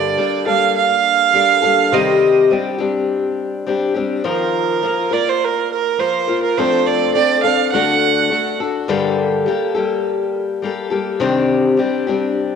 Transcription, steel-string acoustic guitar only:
Already playing: G2 D3 G3 A#3 D4 A4
0.17 G3 A#3 D4 A4
0.46 G3 A#3 D4 A4
1.34 G3 A#3 D4 A4
1.62 G3 A#3 D4 A4
1.92 C3 D#3 G3 C4 G4
2.50 G3 C4 D4 G4
2.79 G3 C4 D4 G4
3.67 G3 C4 D4 G4
3.94 G3 C4 D4 G4
4.24 D#3 F3 A#3 F4 A#4
4.83 F3 A#3 F4 A#4
5.11 A#3 F4 A#4
5.98 F3 A#3 F4 A#4
6.28 A#3 F4 A#4
6.58 F3 A3 C4 D4 A4
7.14 A3 C4 D4 A4
7.44 C4 D4 A4
7.73 D3 A3 D4 F#4 A4
8.30 A3 D4 F#4 A4
8.60 D4 F#4 A4
8.88 G2 D3 G3 A#3 G4 A4
9.46 G3 A#3 G4 A4
9.75 G3 A#3 G4 A4
10.62 G3 A#3 G4 A4
10.90 G3 A#3 G4 A4
11.20 C3 D#3 G3 C4 D4 G4
11.77 G3 C4 D4 G4
12.07 G3 C4 D4 G4

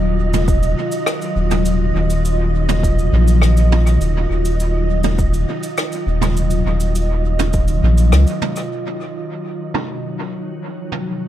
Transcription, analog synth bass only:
Already playing: D#1
1.36 D#1
1.95 D#1
3.13 A#1
4.01 D#1
4.30 D#1
6.07 D#1
6.66 D#1
7.83 A#1
8.12 C#2

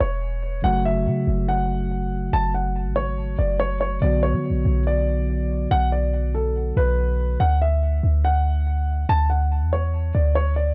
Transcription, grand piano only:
0.00 C#5
0.64 F#5
0.85 E5
1.48 F#5
2.33 A5
2.54 F#5
2.96 C#5
3.39 D5
3.60 C#5
3.81 C#5
4.02 D5
4.23 C#5
4.87 D5
5.71 F#5
5.92 D5
6.35 A4
6.77 B4
7.40 F#5
7.62 E5
8.25 F#5
9.09 A5
9.30 F#5
9.73 C#5
10.15 D5
10.35 C#5
10.56 D5

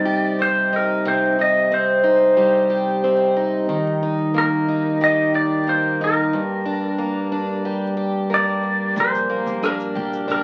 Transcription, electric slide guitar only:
Already playing: D5
0.42 C5
0.76 A#4
1.08 C5
1.41 D#5
1.74 C5
4.38 A#4
5.04 D#5
5.35 D5
5.69 C5
6.04 A#4
8.34 D5
9.00 C5
9.66 A#4
10.32 A#4

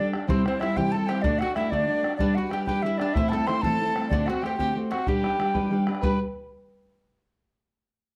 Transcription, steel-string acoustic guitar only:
Already playing: G3
0.00 D4 G4 A4
0.13 D4 G4 A4
0.27 C3 E3 G3 C4 E4 C5
0.45 G3 C4 E4 C5
0.61 G3 C4 E4 C5
0.76 C3 E3 G3 C4 E4 C5
0.93 G3 C4 E4 C5
1.09 G3 C4 E4 C5
1.24 D3 A3 D4 F#4 D5
1.41 D4 F#4 D5
1.56 A3 D4 F#4 D5
1.71 D3 A3 D4 F#4 D5
1.88 A3 D4 F#4 D5
2.03 D4 F#4 D5
2.19 G3 D4 G4 B4
2.36 D4 G4 B4
2.51 G3 D4 G4 B4
2.67 G3 D4 G4 B4
2.83 G3 D4 G4 B4
2.99 D4 G4 B4
3.15 A2 E3 A3 C4 E4 C5
3.32 A3 C4 E4 C5
3.47 A3 C4 E4 C5
3.63 A2 E3 A3 C4 E4 C5
3.80 A3 C4 E4 C5
3.95 A3 C4 E4 C5
4.10 D3 A3 C4 F#4 C5
4.28 C4 F#4 C5
4.43 A3 C4 F#4 C5
4.58 D3 A3 C4 F#4 C5
4.75 A3 C4 F#4 C5
4.91 C4 F#4 C5
5.07 G3 D4 G4 B4
5.23 D4 G4 B4
5.38 G3 D4 G4 B4
5.54 G3 D4 G4 B4
5.70 G3 D4 G4 B4
5.87 D4 G4 B4
6.03 G3 D4 G4 B4

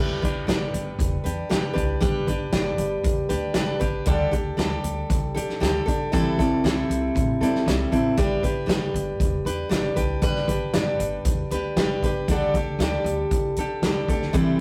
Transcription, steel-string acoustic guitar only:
Already playing: G3 D4 G4
0.00 B4
0.22 D4 G4 B4
0.47 G3 D4 G4 B4
1.24 D4 G4 B4
1.49 G3 D4 G4 B4
1.73 D4 G4 B4
2.00 G3 D4 G4 B4
2.27 D4 G4 B4
2.52 G3 D4 G4 B4
3.29 D4 G4 B4
3.55 G3 D4 G4 B4
3.80 D4 G4 B4
4.06 D3 G3 D4 G4 A4
4.31 D4 G4 A4
4.57 G3 D4 G4 A4
5.34 D4 G4 A4
5.60 G3 D4 G4 A4
5.86 D4 G4 A4
6.12 C3 E3 G3 C4 E4 A4
6.39 G3 C4 E4 A4
6.64 G3 C4 E4 A4
7.41 G3 C4 E4 A4
7.68 G3 C4 E4 A4
7.92 G3 C4 E4 A4
8.17 G3 D4 G4 B4
8.44 D4 G4 B4
8.66 G3 D4 G4 B4
9.46 D4 G4 B4
9.69 G3 D4 G4 B4
9.96 D4 G4 B4
10.22 G3 D4 G4 B4
10.48 D4 G4 B4
10.74 G3 D4 G4 B4
11.52 D4 G4 B4
11.77 G3 D4 G4 B4
12.04 D4 G4 B4
12.30 D3 G3 D4 G4 A4
12.56 D4 G4 A4
12.81 G3 D4 G4 A4
13.58 D4 G4 A4
13.84 G3 D4 G4 A4
14.10 D4 G4 A4
14.33 C3 E3 G3 C4 E4 A4

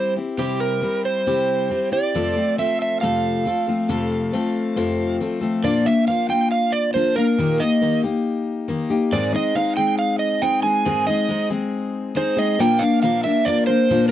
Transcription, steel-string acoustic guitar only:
Already playing: G3 C4 E4 G4
0.16 C4 E4 G4
0.38 C3 G3 C4 E4 G4
0.82 G3 C4 E4 G4
1.26 C3 G3 C4 E4 G4
1.70 G3 C4 E4 G4
1.92 C4 E4 G4
2.14 F2 C3 F3 A3 C4 A4
2.37 F3 A3 C4 A4
2.58 F3 A3 C4 A4
3.02 F2 C3 F3 A3 C4 A4
3.45 F3 A3 C4 A4
3.67 F3 A3 C4 A4
3.89 F2 C3 F3 A3 C4 A4
4.32 F3 A3 C4 A4
4.76 F2 C3 F3 A3 C4 A4
5.20 F3 A3 C4 A4
5.41 F3 A3 C4 A4
5.63 A#2 F3 A#3 D4 F4
5.85 A#3 D4 F4
6.08 F3 A#3 D4 F4
6.29 A#3 D4 F4
6.95 F3 A#3 D4 F4
7.16 A#3 D4 F4
7.38 A#2 D#3 A#3 D#4 G4
7.60 A#3 D#4 G4
7.81 D#3 A#3 D#4 G4
8.03 A#3 D#4 G4
8.68 D#3 A#3 D#4 G4
8.90 A#3 D#4 G4
9.12 G#2 D#3 G#3 C4 D#4 G#4
9.33 G#3 C4 D#4 G#4
9.55 G#3 C4 D#4 G#4
9.77 G#3 C4 D#4 G#4
10.42 G#3 C4 D#4 G#4
10.64 G#3 C4 D#4 G#4
10.85 G#2 D#3 G#3 C4 D#4 G#4
11.07 G#3 C4 D#4 G#4
11.29 G#3 C4 D#4 G#4
11.50 G#3 C4 D#4 G#4
12.15 G#3 C4 D#4 G#4
12.36 G#3 C4 D#4 G#4
12.59 A#2 F3 A#3 D4 A#4
12.80 A#3 D4 A#4
13.03 A#2 F3 A#3 D4 A#4
13.25 A#3 D4 A#4
13.46 F3 A#3 D4 A#4
13.68 A#3 D4 A#4
13.90 A#2 F3 A#3 D4 A#4

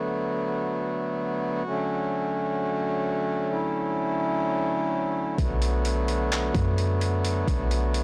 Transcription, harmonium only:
Already playing: D3 F#3 A3 B3 F#4
1.66 D3 F#3 A3 C#4
3.52 E4
5.38 B3 F#4

